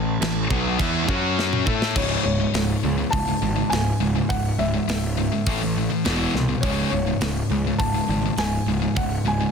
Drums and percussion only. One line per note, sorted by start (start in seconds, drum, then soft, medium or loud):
0.22 snare loud
0.22 crash medium
0.50 kick loud
0.79 kick loud
0.79 crash medium
1.09 kick loud
1.39 snare medium
1.53 mid tom medium
1.67 kick medium
1.82 snare medium
1.96 kick loud
1.96 crash loud
2.54 snare loud
2.54 open hi-hat medium
3.13 kick loud
3.13 open hi-hat medium
3.72 snare medium
3.72 open hi-hat medium
4.30 kick loud
4.30 open hi-hat medium
4.89 snare loud
4.89 open hi-hat medium
5.46 kick loud
5.46 open hi-hat medium
6.05 snare medium
6.05 open hi-hat soft
6.35 snare soft
6.63 kick loud
6.63 open hi-hat medium
7.21 snare loud
7.21 open hi-hat medium
7.80 kick loud
7.80 open hi-hat medium
8.38 snare loud
8.38 open hi-hat medium
8.97 kick loud
8.97 open hi-hat medium